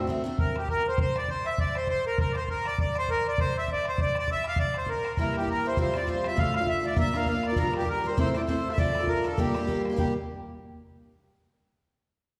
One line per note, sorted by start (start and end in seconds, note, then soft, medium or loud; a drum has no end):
0.00 0.22 C4 medium
0.07 0.23 F#3 medium
0.07 0.25 A3 medium
0.07 0.24 C4 medium
0.07 0.25 D4 medium
0.07 bodhran medium
0.24 0.38 F#3 medium
0.24 0.39 A3 medium
0.24 0.38 C4 medium
0.24 0.39 D4 medium
0.38 0.56 A#4 medium
0.38 bodhran loud
0.56 0.69 G4 medium
0.56 bodhran medium
0.68 0.87 A#4 loud
0.68 bodhran medium
0.88 0.99 C5 medium
0.98 1.17 C5 loud
0.98 bodhran loud
1.16 1.30 D5 medium
1.16 bodhran medium
1.28 1.47 C5 loud
1.28 bodhran medium
1.46 1.59 E5 loud
1.46 bodhran medium
1.58 1.77 D5 loud
1.58 bodhran medium
1.75 1.88 C5 medium
1.75 bodhran medium
1.87 2.05 C5 loud
1.87 bodhran medium
2.07 2.19 A#4 loud
2.18 2.32 A#4 loud
2.18 bodhran medium
2.32 2.36 D5 medium
2.32 bodhran medium
2.36 2.49 C5 loud
2.48 2.67 A#4 medium
2.48 bodhran medium
2.65 2.79 D5 loud
2.65 bodhran medium
2.78 2.97 D5 medium
2.78 bodhran medium
2.95 3.10 C5 loud
2.95 bodhran medium
3.08 3.27 A#4 loud
3.08 bodhran medium
3.28 3.40 D5 loud
3.38 3.57 C5 loud
3.38 bodhran medium
3.58 3.70 E5 loud
3.68 bodhran medium
3.72 3.86 D5 loud
3.85 4.00 C5 loud
3.85 bodhran medium
3.98 4.17 D5 loud
3.98 bodhran medium
4.15 4.30 D5 loud
4.15 bodhran medium
4.28 4.46 E5 loud
4.28 bodhran medium
4.44 4.59 F5 loud
4.44 bodhran medium
4.56 4.76 D5 loud
4.56 bodhran medium
4.74 4.89 C5 medium
4.74 bodhran medium
4.86 5.18 A#4 medium
4.86 bodhran medium
5.05 bodhran medium
5.17 5.41 C3 medium
5.17 5.42 E3 medium
5.17 5.42 G3 medium
5.17 5.41 A#3 medium
5.17 5.39 E4 medium
5.17 5.36 A#4 medium
5.17 bodhran medium
5.34 5.49 G4 medium
5.34 bodhran medium
5.41 5.64 G3 soft
5.41 5.65 A#3 medium
5.41 5.65 E4 medium
5.47 5.67 A#4 loud
5.47 bodhran medium
5.65 5.77 E3 medium
5.65 5.77 G3 medium
5.65 5.78 A#3 medium
5.65 5.78 E4 medium
5.65 5.78 C5 medium
5.77 5.92 F3 medium
5.77 5.94 G3 medium
5.77 5.94 C4 medium
5.77 5.95 F4 medium
5.77 5.97 C5 loud
5.77 bodhran medium
5.94 6.06 F3 medium
5.94 6.07 G3 medium
5.94 6.08 C4 medium
5.94 6.08 F4 medium
5.94 6.09 D5 medium
5.94 bodhran medium
6.07 6.31 F3 medium
6.07 6.31 G3 medium
6.07 6.30 C4 medium
6.07 6.28 F4 medium
6.07 6.26 C5 medium
6.07 bodhran medium
6.24 6.39 E5 medium
6.24 bodhran medium
6.29 6.37 G3 soft
6.29 6.37 C4 soft
6.29 6.36 F4 medium
6.36 6.60 D2 medium
6.36 6.61 A2 medium
6.36 6.60 D3 medium
6.36 6.60 A3 medium
6.36 6.59 D4 medium
6.36 6.58 F4 medium
6.36 6.55 F5 loud
6.36 bodhran loud
6.54 6.69 F5 loud
6.54 bodhran medium
6.59 6.82 D3 soft
6.59 6.83 A3 soft
6.59 6.83 D4 medium
6.59 6.84 F4 medium
6.67 6.86 E5 loud
6.67 bodhran medium
6.83 6.96 D3 medium
6.83 6.97 A3 medium
6.83 6.96 D4 medium
6.83 6.96 F4 medium
6.83 6.97 D5 medium
6.96 7.12 A#3 medium
6.96 7.13 D4 medium
6.96 7.14 F4 medium
6.96 7.14 A#4 medium
6.96 7.16 E5 loud
6.96 bodhran loud
7.13 7.25 A#3 medium
7.13 7.27 D4 medium
7.13 7.27 F4 medium
7.13 7.28 A#4 medium
7.13 7.27 F5 medium
7.13 bodhran medium
7.26 7.51 A#3 medium
7.26 7.51 D4 medium
7.26 7.50 F4 medium
7.26 7.48 A#4 medium
7.26 7.46 F5 medium
7.26 bodhran medium
7.43 7.59 D5 medium
7.43 bodhran medium
7.49 7.57 D4 medium
7.49 7.58 F4 soft
7.49 7.57 A#4 medium
7.56 7.81 G2 medium
7.56 7.81 D3 medium
7.56 7.81 F3 medium
7.56 7.81 G3 medium
7.56 7.80 D4 medium
7.56 7.80 A#4 medium
7.56 7.74 A#4 loud
7.56 bodhran medium
7.74 7.89 G4 loud
7.74 bodhran medium
7.81 8.03 D3 medium
7.81 8.04 G3 soft
7.81 8.04 D4 medium
7.81 8.05 A#4 medium
7.87 8.06 A#4 loud
7.87 bodhran medium
8.04 8.17 D3 medium
8.04 8.17 G3 medium
8.04 8.18 D4 medium
8.04 8.18 A#4 medium
8.04 8.18 C5 medium
8.17 8.35 A2 medium
8.17 8.33 A3 medium
8.17 8.35 C4 medium
8.17 8.35 E4 medium
8.17 8.35 A4 medium
8.17 8.36 C5 loud
8.17 bodhran loud
8.34 8.46 A3 medium
8.34 8.47 C4 medium
8.34 8.48 E4 medium
8.34 8.49 A4 medium
8.34 8.42 D5 medium
8.34 bodhran medium
8.47 8.71 A3 medium
8.47 8.71 C4 medium
8.47 8.71 E4 medium
8.47 8.69 A4 medium
8.47 8.68 C5 medium
8.47 bodhran medium
8.70 8.78 C4 medium
8.70 8.78 E4 soft
8.70 8.77 A4 medium
8.70 8.78 E5 medium
8.70 8.72 F5 medium
8.78 9.01 D2 medium
8.78 9.02 A2 medium
8.78 9.02 D3 medium
8.78 9.01 D4 medium
8.78 9.00 F4 medium
8.78 8.99 A4 medium
8.78 9.09 D5 loud
8.78 bodhran loud
8.95 bodhran medium
9.00 9.23 D3 medium
9.00 9.24 D4 soft
9.00 9.25 F4 medium
9.00 9.24 A4 medium
9.07 9.26 A#4 medium
9.07 bodhran medium
9.24 9.37 D3 medium
9.24 9.38 D4 medium
9.24 9.38 F4 medium
9.24 9.39 A4 medium
9.24 bodhran medium
9.37 9.53 G3 medium
9.37 9.54 A#3 medium
9.37 9.55 D4 medium
9.37 9.82 G4 medium
9.37 9.55 G4 loud
9.37 bodhran medium
9.54 9.66 G3 medium
9.54 9.67 A#3 medium
9.54 9.68 D4 medium
9.54 9.69 G4 medium
9.54 bodhran medium
9.67 9.91 G3 medium
9.67 9.91 A#3 medium
9.67 9.90 D4 medium
9.67 9.89 G4 medium
9.67 bodhran medium
9.85 bodhran medium
9.90 9.96 A#3 medium
9.90 9.97 D4 medium
9.90 9.97 G4 medium
9.96 10.11 G3 medium
9.96 10.11 A#3 medium
9.96 10.12 D4 medium
9.96 10.14 G4 medium
9.96 10.12 G4 medium
9.96 bodhran medium